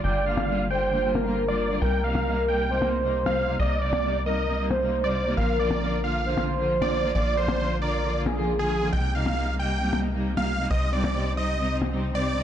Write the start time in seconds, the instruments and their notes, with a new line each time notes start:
0.04 analog synth bass G1, string section D3 G3 A#3 F4, soft synth lead D5, supersaw synth G5
0.26 string section D3 G3 A#3 F4, supersaw synth F5
0.37 percussion blips
0.48 string section D3 G3 A#3 F4
0.70 string section D3 G3 A#3 F4, soft synth lead C5, supersaw synth G5
0.93 string section D3 G3 A#3 F4
1.04 string section D3 G3 A#3 F4
1.15 soft synth lead A#4, percussion blips
1.26 string section D3 G3 A#3 F4
1.48 string section D3 G3 A#3 F4, supersaw synth D5
1.71 string section D3 G3 A#3 F4
1.82 analog synth bass C2, string section C3 G3 A#3 D#4, soft synth lead A#4, supersaw synth G5
2.04 string section C3 G3 A#3 D#4, supersaw synth F5
2.15 percussion blips
2.26 string section C3 G3 A#3 D#4
2.48 string section C3 G3 A#3 D#4, supersaw synth G5
2.71 string section C3 G3 A#3 D#4, soft synth lead C5
2.82 string section C3 G3 A#3 D#4, percussion blips
3.04 string section C3 G3 A#3 D#4
3.26 string section C3 G3 A#3 D#4, supersaw synth F5, percussion blips
3.48 string section C3 G3 A#3 D#4
3.59 analog synth bass C2, string section C3 G3 A#3 D#4, soft synth lead D5, supersaw synth D#5
3.82 string section C3 G3 A#3 D#4, supersaw synth D5
3.93 percussion blips
4.04 string section C3 G3 A#3 D#4
4.26 string section C3 G3 A#3 D#4, soft synth lead A#4, supersaw synth D#5
4.48 string section C3 G3 A#3 D#4
4.59 string section C3 G3 A#3 D#4
4.71 soft synth lead C5, percussion blips
4.82 string section C3 G3 A#3 D#4
5.04 string section C3 G3 A#3 D#4, supersaw synth D5
5.26 string section C3 G3 A#3 D#4
5.37 analog synth bass A#1, string section D3 F3 A#3 F4, soft synth lead A#4, supersaw synth F5
5.59 string section D3 F3 A#3 F4, supersaw synth D5
5.71 percussion blips
5.82 string section D3 F3 A#3 F4
6.04 string section D3 F3 A#3 F4, supersaw synth F5
6.26 string section D3 F3 A#3 F4, soft synth lead C5
6.37 string section D3 F3 A#3 F4, percussion blips
6.60 string section D3 F3 A#3 F4
6.82 string section D3 F3 A#3 F4, supersaw synth D5, percussion blips
7.04 string section D3 F3 A#3 F4
7.15 analog synth bass A#1, string section D3 F3 A#3 F4, soft synth lead D5, supersaw synth D5
7.37 string section D3 F3 A#3 F4, supersaw synth C5
7.48 percussion blips
7.60 string section D3 F3 A#3 F4
7.82 string section D3 F3 A#3 F4, soft synth lead A#4, supersaw synth D5
8.04 string section D3 F3 A#3 F4
8.15 string section D3 F3 A#3 F4
8.26 soft synth lead G#4, percussion blips
8.37 string section D3 F3 A#3 F4
8.59 string section D3 F3 A#3 F4, supersaw synth G#4
8.82 string section D3 F3 A#3 F4
8.93 analog synth bass C2, string section C3 G3 A#3 D#4, supersaw synth G5
9.15 string section C3 G3 A#3 D#4, supersaw synth F5
9.26 percussion blips
9.37 string section C3 G3 A#3 D#4
9.59 string section C3 G3 A#3 D#4, supersaw synth G5
9.82 string section C3 G3 A#3 D#4
9.93 string section C3 G3 A#3 D#4, percussion blips
10.15 string section C3 G3 A#3 D#4
10.37 string section C3 G3 A#3 D#4, supersaw synth F5, percussion blips
10.60 string section C3 G3 A#3 D#4
10.71 analog synth bass C2, string section C3 G3 C4 D#4, supersaw synth D#5
10.93 string section C3 G3 C4 D#4, supersaw synth D5
11.04 percussion blips
11.15 string section C3 G3 C4 D#4
11.37 string section C3 G3 C4 D#4, supersaw synth D#5
11.59 string section C3 G3 C4 D#4
11.70 string section C3 G3 C4 D#4
11.82 percussion blips
11.93 string section C3 G3 C4 D#4
12.15 string section C3 G3 C4 D#4, supersaw synth D5
12.37 string section C3 G3 C4 D#4